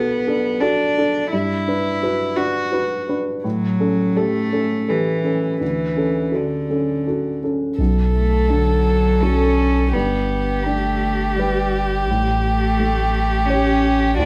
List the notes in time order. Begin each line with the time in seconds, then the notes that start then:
Already playing: B1 B3 D4 F#4 A4
0.27 D4 A4
0.60 D4 F#4 A4
0.98 D4 A4
1.31 G2 E4
1.68 D4 B4
2.03 F#4 B4
2.36 D4 F#4 B4
2.72 F#4 B4
3.09 D4 B4
3.44 A2 F#3
3.80 C#4 A4
4.16 A3 G4 A4
4.53 C#4 A4
4.88 E3 G4 A4
5.24 C#4 A4
5.61 D2 E3
5.96 C#4 A4
6.32 D3 F#4 A4
6.70 C#4 A4
7.07 F#4 A4
7.43 C#4 A4
7.79 B1 A4
8.14 A3
8.50 D3 F#3
9.22 C#4 F#4 A4
9.93 G1 G2 B3 G4
10.65 A3 D4
11.36 G3 G4 B4
12.06 A1
12.10 A2
12.42 A3
12.79 A3
13.46 C#4 G4 C#5
14.17 D2 D4 F#4